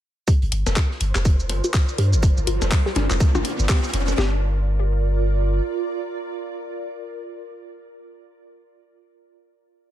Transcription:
0.28 ambient pad F4, synth arpeggio sound G4, synth texture C5, kick, closed hi-hat, riser, shaker
0.42 sub bass G1, closed hi-hat
0.52 sub bass G1, closed hi-hat
0.60 ambient pad A#4
0.67 sub bass F1, snare, closed hi-hat, percussion blips, shaker
0.76 synth arpeggio sound F4, kick, snare, clap, closed hi-hat, shaker
0.91 ambient pad D5, snare
1.00 sub bass G1, closed hi-hat
1.15 sub bass F1, synth arpeggio sound G4, snare, clap, percussion blips, shaker
1.25 kick, closed hi-hat, shaker
1.40 shaker
1.49 sub bass G1, closed hi-hat, percussion blips
1.64 synth arpeggio sound F4, shaker
1.74 kick, snare, clap, closed hi-hat, shaker
1.89 shaker
1.98 sub bass G2, synth arpeggio sound G4, closed hi-hat
2.13 sub bass F1, shaker
2.23 kick, closed hi-hat, shaker
2.37 sub bass G1, shaker
2.47 sub bass G1, synth arpeggio sound F4, closed hi-hat
2.60 sub bass F1, snare, closed hi-hat, percussion blips, shaker
2.71 kick, snare, clap, closed hi-hat, shaker
2.86 synth arpeggio sound G4, snare
2.95 sub bass G1, snare, closed hi-hat, percussion blips
3.10 sub bass F1, clap, percussion blips, shaker
3.20 kick, closed hi-hat, shaker
3.35 sub bass G1, synth arpeggio sound F4, percussion blips, shaker
3.45 closed hi-hat
3.59 sub bass G1, shaker
3.69 synth arpeggio sound G4, kick, snare, clap, closed hi-hat, open hi-hat, shaker
3.84 shaker
3.93 sub bass F1, closed hi-hat
4.08 percussion blips, shaker
4.18 sub bass G1, ambient pad F4, synth arpeggio sound G4, snare
4.27 ambient pad A#4
4.35 ambient pad D5

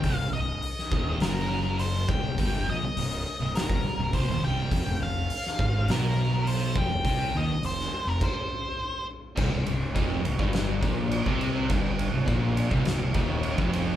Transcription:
Already playing: lead electric guitar G5
0.02 fingered electric bass C1, distorted electric guitar C2, kick, open hi-hat
0.17 fingered electric bass C1, distorted electric guitar C2, lead electric guitar F5
0.33 fingered electric bass C1, distorted electric guitar C2, lead electric guitar D#5
0.62 open hi-hat
0.79 snare
0.91 fingered electric bass D#1, distorted electric guitar D#2, kick
1.20 fingered electric bass F#1, distorted electric guitar F#2, lead electric guitar A#4, snare, open hi-hat
1.79 lead electric guitar C5, open hi-hat
2.08 fingered electric bass C1, distorted electric guitar C2, lead electric guitar G5, kick
2.23 fingered electric bass C1, distorted electric guitar C2
2.38 fingered electric bass G1, distorted electric guitar G2, kick, open hi-hat
2.67 fingered electric bass A#1, distorted electric guitar A#2, lead electric guitar D#5
2.82 muted distorted electric guitar stroke, muted fingered electric bass stroke
2.96 fingered electric bass C1, distorted electric guitar C2, open hi-hat
3.40 fingered electric bass C1, distorted electric guitar C2
3.55 lead electric guitar A#4, snare, open hi-hat
3.70 fingered electric bass G1, distorted electric guitar G2, kick
3.83 muted distorted electric guitar stroke, muted fingered electric bass stroke
3.98 fingered electric bass C1, distorted electric guitar C2
4.12 fingered electric bass C1, distorted electric guitar C2, lead electric guitar C5, kick, open hi-hat
4.27 fingered electric bass D#1, distorted electric guitar D#2
4.42 fingered electric bass C1, distorted electric guitar C2, lead electric guitar G5
4.71 fingered electric bass F1, distorted electric guitar F2, kick, open hi-hat
4.85 fingered electric bass F1, distorted electric guitar F2
5.00 fingered electric bass F1, distorted electric guitar F2, lead electric guitar F5
5.30 open hi-hat
5.46 snare
5.59 fingered electric bass G#1, distorted electric guitar G#2, kick
5.88 fingered electric bass B1, distorted electric guitar B2, lead electric guitar A#4, snare, open hi-hat
6.47 lead electric guitar C5, open hi-hat
6.76 fingered electric bass F1, distorted electric guitar F2, lead electric guitar G5, kick
6.90 fingered electric bass F1, distorted electric guitar F2
7.05 fingered electric bass C2, distorted electric guitar C3, kick, open hi-hat
7.34 fingered electric bass D#2, distorted electric guitar D#3, lead electric guitar D#5
7.47 muted distorted electric guitar stroke, muted fingered electric bass stroke
7.62 fingered electric bass F1, distorted electric guitar F2, lead electric guitar C5, open hi-hat
7.80 snare
8.06 fingered electric bass F1, distorted electric guitar F2, lead electric guitar A#4
8.21 lead electric guitar C5, kick, crash
9.37 fingered electric bass C1, distorted electric guitar C2, kick, crash
9.53 fingered electric bass C1, distorted electric guitar C2
9.67 fingered electric bass C1, distorted electric guitar C2, ride
9.96 fingered electric bass F1, distorted electric guitar F2, kick, ride
10.24 fingered electric bass C1, distorted electric guitar C2, ride
10.39 fingered electric bass G1, distorted electric guitar G2, kick
10.53 snare, ride
10.82 fingered electric bass A#1, distorted electric guitar A#2, kick, ride
11.11 ride
11.26 fingered electric bass C2, distorted electric guitar C3, kick
11.41 ride
11.70 fingered electric bass G1, distorted electric guitar G2, kick, ride
11.99 ride
12.14 fingered electric bass C1, distorted electric guitar C2
12.27 fingered electric bass A#1, distorted electric guitar A#2, kick, ride
12.57 ride
12.71 fingered electric bass C1, distorted electric guitar C2, kick
12.85 fingered electric bass C1, distorted electric guitar C2, snare, ride
13.00 fingered electric bass C1, distorted electric guitar C2
13.14 fingered electric bass D#1, distorted electric guitar D#2, kick, ride
13.43 ride
13.58 fingered electric bass F1, distorted electric guitar F2, kick
13.73 ride

